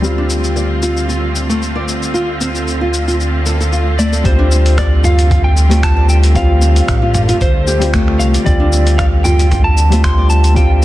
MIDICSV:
0, 0, Header, 1, 7, 480
1, 0, Start_track
1, 0, Key_signature, -1, "minor"
1, 0, Tempo, 526316
1, 37, Time_signature, 4, 2, 24, 8
1, 9893, End_track
2, 0, Start_track
2, 0, Title_t, "Electric slide guitar"
2, 0, Program_c, 0, 29
2, 3636, Note_on_c, 0, 74, 79
2, 3881, Note_on_c, 0, 72, 81
2, 3884, Note_off_c, 0, 74, 0
2, 4362, Note_off_c, 0, 72, 0
2, 4366, Note_on_c, 0, 74, 89
2, 4585, Note_off_c, 0, 74, 0
2, 4605, Note_on_c, 0, 77, 102
2, 4959, Note_off_c, 0, 77, 0
2, 4963, Note_on_c, 0, 79, 99
2, 5324, Note_on_c, 0, 81, 115
2, 5326, Note_off_c, 0, 79, 0
2, 5556, Note_off_c, 0, 81, 0
2, 5560, Note_on_c, 0, 79, 108
2, 5624, Note_off_c, 0, 79, 0
2, 5801, Note_on_c, 0, 77, 99
2, 6765, Note_on_c, 0, 72, 86
2, 6788, Note_off_c, 0, 77, 0
2, 7208, Note_off_c, 0, 72, 0
2, 7473, Note_on_c, 0, 77, 86
2, 7538, Note_off_c, 0, 77, 0
2, 7714, Note_on_c, 0, 74, 93
2, 8162, Note_off_c, 0, 74, 0
2, 8191, Note_on_c, 0, 77, 87
2, 8256, Note_off_c, 0, 77, 0
2, 8428, Note_on_c, 0, 79, 94
2, 8790, Note_off_c, 0, 79, 0
2, 8794, Note_on_c, 0, 81, 107
2, 9153, Note_off_c, 0, 81, 0
2, 9157, Note_on_c, 0, 84, 112
2, 9387, Note_off_c, 0, 84, 0
2, 9391, Note_on_c, 0, 81, 105
2, 9630, Note_off_c, 0, 81, 0
2, 9633, Note_on_c, 0, 79, 100
2, 9893, Note_off_c, 0, 79, 0
2, 9893, End_track
3, 0, Start_track
3, 0, Title_t, "Nylon-string guitar"
3, 0, Program_c, 1, 24
3, 165, Note_on_c, 1, 62, 72
3, 229, Note_off_c, 1, 62, 0
3, 511, Note_on_c, 1, 74, 71
3, 587, Note_off_c, 1, 74, 0
3, 753, Note_on_c, 1, 65, 74
3, 981, Note_off_c, 1, 65, 0
3, 992, Note_on_c, 1, 65, 72
3, 1117, Note_off_c, 1, 65, 0
3, 1362, Note_on_c, 1, 57, 69
3, 1470, Note_off_c, 1, 57, 0
3, 1600, Note_on_c, 1, 74, 71
3, 1709, Note_off_c, 1, 74, 0
3, 1950, Note_on_c, 1, 65, 84
3, 2076, Note_off_c, 1, 65, 0
3, 2194, Note_on_c, 1, 60, 72
3, 2269, Note_off_c, 1, 60, 0
3, 2564, Note_on_c, 1, 65, 66
3, 2792, Note_off_c, 1, 65, 0
3, 2807, Note_on_c, 1, 65, 73
3, 2870, Note_off_c, 1, 65, 0
3, 3156, Note_on_c, 1, 69, 73
3, 3272, Note_off_c, 1, 69, 0
3, 3287, Note_on_c, 1, 69, 69
3, 3350, Note_off_c, 1, 69, 0
3, 3397, Note_on_c, 1, 65, 76
3, 3513, Note_off_c, 1, 65, 0
3, 3637, Note_on_c, 1, 57, 69
3, 3753, Note_off_c, 1, 57, 0
3, 3761, Note_on_c, 1, 69, 89
3, 3864, Note_off_c, 1, 69, 0
3, 4000, Note_on_c, 1, 62, 80
3, 4067, Note_off_c, 1, 62, 0
3, 4355, Note_on_c, 1, 74, 79
3, 4429, Note_off_c, 1, 74, 0
3, 4593, Note_on_c, 1, 65, 76
3, 4819, Note_off_c, 1, 65, 0
3, 4830, Note_on_c, 1, 65, 78
3, 4956, Note_off_c, 1, 65, 0
3, 5196, Note_on_c, 1, 57, 74
3, 5307, Note_off_c, 1, 57, 0
3, 5441, Note_on_c, 1, 74, 79
3, 5549, Note_off_c, 1, 74, 0
3, 5794, Note_on_c, 1, 65, 94
3, 5918, Note_off_c, 1, 65, 0
3, 6030, Note_on_c, 1, 60, 76
3, 6107, Note_off_c, 1, 60, 0
3, 6402, Note_on_c, 1, 65, 73
3, 6631, Note_off_c, 1, 65, 0
3, 6645, Note_on_c, 1, 65, 77
3, 6709, Note_off_c, 1, 65, 0
3, 6996, Note_on_c, 1, 67, 78
3, 7225, Note_off_c, 1, 67, 0
3, 7237, Note_on_c, 1, 57, 87
3, 7593, Note_off_c, 1, 57, 0
3, 7601, Note_on_c, 1, 74, 74
3, 7709, Note_off_c, 1, 74, 0
3, 7841, Note_on_c, 1, 62, 80
3, 7907, Note_off_c, 1, 62, 0
3, 8196, Note_on_c, 1, 74, 78
3, 8270, Note_off_c, 1, 74, 0
3, 8436, Note_on_c, 1, 65, 84
3, 8663, Note_off_c, 1, 65, 0
3, 8674, Note_on_c, 1, 65, 80
3, 8798, Note_off_c, 1, 65, 0
3, 9043, Note_on_c, 1, 57, 81
3, 9150, Note_off_c, 1, 57, 0
3, 9282, Note_on_c, 1, 74, 78
3, 9389, Note_off_c, 1, 74, 0
3, 9632, Note_on_c, 1, 65, 92
3, 9757, Note_off_c, 1, 65, 0
3, 9893, End_track
4, 0, Start_track
4, 0, Title_t, "Felt piano"
4, 0, Program_c, 2, 0
4, 0, Control_c, 2, 64, 127
4, 16, Note_on_c, 2, 55, 68
4, 36, Note_on_c, 2, 60, 62
4, 53, Note_on_c, 2, 65, 76
4, 3840, Note_off_c, 2, 55, 0
4, 3850, Note_off_c, 2, 60, 0
4, 3858, Note_off_c, 2, 65, 0
4, 3862, Note_on_c, 2, 55, 87
4, 3879, Note_on_c, 2, 60, 82
4, 3890, Control_c, 2, 64, 0
4, 3899, Note_on_c, 2, 65, 94
4, 4034, Control_c, 2, 64, 127
4, 5172, Note_off_c, 2, 55, 0
4, 5181, Note_off_c, 2, 60, 0
4, 5186, Note_on_c, 2, 55, 79
4, 5191, Note_off_c, 2, 65, 0
4, 5204, Note_on_c, 2, 60, 70
4, 5223, Note_on_c, 2, 65, 89
4, 5761, Note_off_c, 2, 55, 0
4, 5769, Note_off_c, 2, 60, 0
4, 5779, Note_off_c, 2, 65, 0
4, 5780, Note_on_c, 2, 55, 82
4, 5801, Note_on_c, 2, 60, 78
4, 5818, Note_on_c, 2, 65, 102
4, 7092, Note_off_c, 2, 55, 0
4, 7102, Note_off_c, 2, 60, 0
4, 7106, Note_on_c, 2, 55, 82
4, 7110, Note_off_c, 2, 65, 0
4, 7126, Note_on_c, 2, 60, 77
4, 7143, Note_on_c, 2, 65, 91
4, 7680, Note_off_c, 2, 55, 0
4, 7690, Note_off_c, 2, 60, 0
4, 7699, Note_off_c, 2, 65, 0
4, 7699, Note_on_c, 2, 55, 94
4, 7716, Note_on_c, 2, 60, 83
4, 7735, Note_on_c, 2, 65, 101
4, 9011, Note_off_c, 2, 55, 0
4, 9020, Note_off_c, 2, 60, 0
4, 9028, Note_on_c, 2, 55, 82
4, 9029, Note_off_c, 2, 65, 0
4, 9048, Note_on_c, 2, 60, 74
4, 9066, Note_on_c, 2, 65, 87
4, 9601, Note_off_c, 2, 55, 0
4, 9611, Note_off_c, 2, 60, 0
4, 9615, Note_on_c, 2, 55, 86
4, 9620, Note_off_c, 2, 65, 0
4, 9632, Note_on_c, 2, 60, 81
4, 9652, Note_on_c, 2, 65, 96
4, 9893, Note_off_c, 2, 55, 0
4, 9893, Note_off_c, 2, 60, 0
4, 9893, Note_off_c, 2, 65, 0
4, 9893, End_track
5, 0, Start_track
5, 0, Title_t, "String section"
5, 0, Program_c, 3, 48
5, 0, Note_on_c, 3, 50, 72
5, 0, Note_on_c, 3, 57, 75
5, 0, Note_on_c, 3, 60, 70
5, 0, Note_on_c, 3, 65, 70
5, 9893, Note_off_c, 3, 50, 0
5, 9893, Note_off_c, 3, 57, 0
5, 9893, Note_off_c, 3, 60, 0
5, 9893, Note_off_c, 3, 65, 0
5, 9893, End_track
6, 0, Start_track
6, 0, Title_t, "Analog synth bass"
6, 0, Program_c, 4, 38
6, 0, Note_on_c, 4, 38, 76
6, 3852, Note_off_c, 4, 38, 0
6, 3876, Note_on_c, 4, 38, 98
6, 6212, Note_off_c, 4, 38, 0
6, 6276, Note_on_c, 4, 33, 97
6, 6693, Note_off_c, 4, 33, 0
6, 6755, Note_on_c, 4, 38, 85
6, 7476, Note_on_c, 4, 36, 84
6, 7490, Note_off_c, 4, 38, 0
6, 7637, Note_off_c, 4, 36, 0
6, 7717, Note_on_c, 4, 38, 95
6, 9893, Note_off_c, 4, 38, 0
6, 9893, End_track
7, 0, Start_track
7, 0, Title_t, "Drums"
7, 36, Note_on_c, 9, 82, 30
7, 127, Note_off_c, 9, 82, 0
7, 274, Note_on_c, 9, 82, 74
7, 365, Note_off_c, 9, 82, 0
7, 402, Note_on_c, 9, 82, 42
7, 493, Note_off_c, 9, 82, 0
7, 516, Note_on_c, 9, 82, 31
7, 607, Note_off_c, 9, 82, 0
7, 754, Note_on_c, 9, 82, 70
7, 846, Note_off_c, 9, 82, 0
7, 885, Note_on_c, 9, 82, 38
7, 976, Note_off_c, 9, 82, 0
7, 998, Note_on_c, 9, 82, 32
7, 1089, Note_off_c, 9, 82, 0
7, 1239, Note_on_c, 9, 82, 69
7, 1330, Note_off_c, 9, 82, 0
7, 1370, Note_on_c, 9, 82, 44
7, 1461, Note_off_c, 9, 82, 0
7, 1481, Note_on_c, 9, 82, 33
7, 1572, Note_off_c, 9, 82, 0
7, 1720, Note_on_c, 9, 82, 68
7, 1811, Note_off_c, 9, 82, 0
7, 1848, Note_on_c, 9, 82, 42
7, 1939, Note_off_c, 9, 82, 0
7, 1959, Note_on_c, 9, 82, 30
7, 2050, Note_off_c, 9, 82, 0
7, 2200, Note_on_c, 9, 82, 74
7, 2291, Note_off_c, 9, 82, 0
7, 2327, Note_on_c, 9, 82, 42
7, 2419, Note_off_c, 9, 82, 0
7, 2441, Note_on_c, 9, 82, 30
7, 2533, Note_off_c, 9, 82, 0
7, 2681, Note_on_c, 9, 82, 75
7, 2772, Note_off_c, 9, 82, 0
7, 2811, Note_on_c, 9, 82, 41
7, 2902, Note_off_c, 9, 82, 0
7, 2921, Note_on_c, 9, 82, 30
7, 3013, Note_off_c, 9, 82, 0
7, 3158, Note_on_c, 9, 82, 72
7, 3249, Note_off_c, 9, 82, 0
7, 3292, Note_on_c, 9, 82, 42
7, 3383, Note_off_c, 9, 82, 0
7, 3400, Note_on_c, 9, 82, 33
7, 3491, Note_off_c, 9, 82, 0
7, 3641, Note_on_c, 9, 82, 69
7, 3733, Note_off_c, 9, 82, 0
7, 3767, Note_on_c, 9, 82, 46
7, 3858, Note_off_c, 9, 82, 0
7, 3877, Note_on_c, 9, 36, 99
7, 3877, Note_on_c, 9, 42, 48
7, 3877, Note_on_c, 9, 82, 32
7, 3968, Note_off_c, 9, 36, 0
7, 3969, Note_off_c, 9, 42, 0
7, 3969, Note_off_c, 9, 82, 0
7, 4119, Note_on_c, 9, 82, 79
7, 4210, Note_off_c, 9, 82, 0
7, 4249, Note_on_c, 9, 42, 55
7, 4249, Note_on_c, 9, 82, 41
7, 4340, Note_off_c, 9, 42, 0
7, 4340, Note_off_c, 9, 82, 0
7, 4357, Note_on_c, 9, 36, 94
7, 4358, Note_on_c, 9, 26, 100
7, 4358, Note_on_c, 9, 42, 49
7, 4358, Note_on_c, 9, 82, 33
7, 4448, Note_off_c, 9, 36, 0
7, 4450, Note_off_c, 9, 26, 0
7, 4450, Note_off_c, 9, 42, 0
7, 4450, Note_off_c, 9, 82, 0
7, 4599, Note_on_c, 9, 45, 64
7, 4599, Note_on_c, 9, 82, 74
7, 4690, Note_off_c, 9, 45, 0
7, 4690, Note_off_c, 9, 82, 0
7, 4730, Note_on_c, 9, 42, 56
7, 4730, Note_on_c, 9, 82, 43
7, 4821, Note_off_c, 9, 42, 0
7, 4822, Note_off_c, 9, 82, 0
7, 4836, Note_on_c, 9, 36, 108
7, 4843, Note_on_c, 9, 42, 45
7, 4843, Note_on_c, 9, 45, 79
7, 4843, Note_on_c, 9, 82, 33
7, 4927, Note_off_c, 9, 36, 0
7, 4934, Note_off_c, 9, 42, 0
7, 4934, Note_off_c, 9, 45, 0
7, 4934, Note_off_c, 9, 82, 0
7, 5081, Note_on_c, 9, 82, 81
7, 5172, Note_off_c, 9, 82, 0
7, 5210, Note_on_c, 9, 42, 57
7, 5210, Note_on_c, 9, 82, 45
7, 5301, Note_off_c, 9, 42, 0
7, 5301, Note_off_c, 9, 82, 0
7, 5316, Note_on_c, 9, 36, 99
7, 5319, Note_on_c, 9, 26, 109
7, 5319, Note_on_c, 9, 42, 49
7, 5319, Note_on_c, 9, 82, 36
7, 5407, Note_off_c, 9, 36, 0
7, 5411, Note_off_c, 9, 26, 0
7, 5411, Note_off_c, 9, 42, 0
7, 5411, Note_off_c, 9, 82, 0
7, 5557, Note_on_c, 9, 82, 76
7, 5648, Note_off_c, 9, 82, 0
7, 5687, Note_on_c, 9, 42, 60
7, 5687, Note_on_c, 9, 82, 46
7, 5778, Note_off_c, 9, 42, 0
7, 5778, Note_off_c, 9, 82, 0
7, 5796, Note_on_c, 9, 36, 108
7, 5796, Note_on_c, 9, 42, 42
7, 5796, Note_on_c, 9, 82, 35
7, 5887, Note_off_c, 9, 36, 0
7, 5887, Note_off_c, 9, 42, 0
7, 5887, Note_off_c, 9, 82, 0
7, 6036, Note_on_c, 9, 82, 83
7, 6127, Note_off_c, 9, 82, 0
7, 6167, Note_on_c, 9, 42, 56
7, 6167, Note_on_c, 9, 82, 46
7, 6259, Note_off_c, 9, 42, 0
7, 6259, Note_off_c, 9, 82, 0
7, 6276, Note_on_c, 9, 36, 105
7, 6279, Note_on_c, 9, 26, 104
7, 6279, Note_on_c, 9, 42, 44
7, 6279, Note_on_c, 9, 82, 35
7, 6368, Note_off_c, 9, 36, 0
7, 6370, Note_off_c, 9, 26, 0
7, 6370, Note_off_c, 9, 42, 0
7, 6370, Note_off_c, 9, 82, 0
7, 6516, Note_on_c, 9, 45, 59
7, 6516, Note_on_c, 9, 82, 82
7, 6608, Note_off_c, 9, 45, 0
7, 6608, Note_off_c, 9, 82, 0
7, 6647, Note_on_c, 9, 42, 55
7, 6647, Note_on_c, 9, 82, 42
7, 6739, Note_off_c, 9, 42, 0
7, 6739, Note_off_c, 9, 82, 0
7, 6757, Note_on_c, 9, 36, 110
7, 6759, Note_on_c, 9, 42, 43
7, 6759, Note_on_c, 9, 82, 36
7, 6848, Note_off_c, 9, 36, 0
7, 6850, Note_off_c, 9, 42, 0
7, 6850, Note_off_c, 9, 82, 0
7, 7000, Note_on_c, 9, 82, 77
7, 7091, Note_off_c, 9, 82, 0
7, 7129, Note_on_c, 9, 42, 54
7, 7129, Note_on_c, 9, 82, 43
7, 7220, Note_off_c, 9, 42, 0
7, 7220, Note_off_c, 9, 82, 0
7, 7238, Note_on_c, 9, 26, 104
7, 7238, Note_on_c, 9, 36, 108
7, 7238, Note_on_c, 9, 42, 48
7, 7238, Note_on_c, 9, 82, 38
7, 7329, Note_off_c, 9, 26, 0
7, 7329, Note_off_c, 9, 36, 0
7, 7329, Note_off_c, 9, 42, 0
7, 7329, Note_off_c, 9, 82, 0
7, 7369, Note_on_c, 9, 26, 34
7, 7460, Note_off_c, 9, 26, 0
7, 7480, Note_on_c, 9, 82, 76
7, 7572, Note_off_c, 9, 82, 0
7, 7610, Note_on_c, 9, 42, 58
7, 7610, Note_on_c, 9, 82, 49
7, 7701, Note_off_c, 9, 42, 0
7, 7701, Note_off_c, 9, 82, 0
7, 7719, Note_on_c, 9, 36, 107
7, 7720, Note_on_c, 9, 42, 41
7, 7720, Note_on_c, 9, 82, 34
7, 7810, Note_off_c, 9, 36, 0
7, 7811, Note_off_c, 9, 42, 0
7, 7811, Note_off_c, 9, 82, 0
7, 7959, Note_on_c, 9, 82, 83
7, 8050, Note_off_c, 9, 82, 0
7, 8087, Note_on_c, 9, 42, 54
7, 8087, Note_on_c, 9, 82, 47
7, 8178, Note_off_c, 9, 42, 0
7, 8178, Note_off_c, 9, 82, 0
7, 8197, Note_on_c, 9, 36, 110
7, 8198, Note_on_c, 9, 26, 99
7, 8198, Note_on_c, 9, 42, 41
7, 8198, Note_on_c, 9, 82, 36
7, 8288, Note_off_c, 9, 36, 0
7, 8289, Note_off_c, 9, 26, 0
7, 8289, Note_off_c, 9, 42, 0
7, 8289, Note_off_c, 9, 82, 0
7, 8436, Note_on_c, 9, 45, 58
7, 8436, Note_on_c, 9, 82, 82
7, 8527, Note_off_c, 9, 45, 0
7, 8527, Note_off_c, 9, 82, 0
7, 8568, Note_on_c, 9, 42, 52
7, 8568, Note_on_c, 9, 82, 45
7, 8659, Note_off_c, 9, 42, 0
7, 8659, Note_off_c, 9, 82, 0
7, 8677, Note_on_c, 9, 36, 118
7, 8679, Note_on_c, 9, 42, 45
7, 8679, Note_on_c, 9, 45, 73
7, 8679, Note_on_c, 9, 82, 37
7, 8768, Note_off_c, 9, 36, 0
7, 8770, Note_off_c, 9, 42, 0
7, 8770, Note_off_c, 9, 45, 0
7, 8770, Note_off_c, 9, 82, 0
7, 8916, Note_on_c, 9, 82, 80
7, 9007, Note_off_c, 9, 82, 0
7, 9047, Note_on_c, 9, 42, 57
7, 9047, Note_on_c, 9, 82, 48
7, 9139, Note_off_c, 9, 42, 0
7, 9139, Note_off_c, 9, 82, 0
7, 9156, Note_on_c, 9, 36, 103
7, 9157, Note_on_c, 9, 26, 111
7, 9157, Note_on_c, 9, 42, 44
7, 9158, Note_on_c, 9, 82, 36
7, 9247, Note_off_c, 9, 36, 0
7, 9249, Note_off_c, 9, 26, 0
7, 9249, Note_off_c, 9, 42, 0
7, 9249, Note_off_c, 9, 82, 0
7, 9394, Note_on_c, 9, 82, 75
7, 9485, Note_off_c, 9, 82, 0
7, 9522, Note_on_c, 9, 42, 59
7, 9522, Note_on_c, 9, 82, 50
7, 9613, Note_off_c, 9, 42, 0
7, 9614, Note_off_c, 9, 82, 0
7, 9634, Note_on_c, 9, 36, 103
7, 9635, Note_on_c, 9, 42, 40
7, 9635, Note_on_c, 9, 82, 34
7, 9726, Note_off_c, 9, 36, 0
7, 9726, Note_off_c, 9, 42, 0
7, 9726, Note_off_c, 9, 82, 0
7, 9893, End_track
0, 0, End_of_file